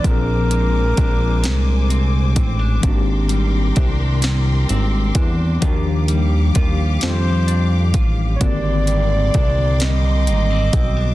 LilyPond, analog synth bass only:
\new Staff \with { instrumentName = "Analog synth bass" } { \clef bass \time 6/8 \key aes \lydian \tempo 4. = 43 bes,,4 bes,,8 c,4 a,,8 | aes,,4 c,4 aes,,8 fes,8 | ees,4 ees,8 f,4 a,,8 | aes,,4 c,4 aes,,8 ces,8 | }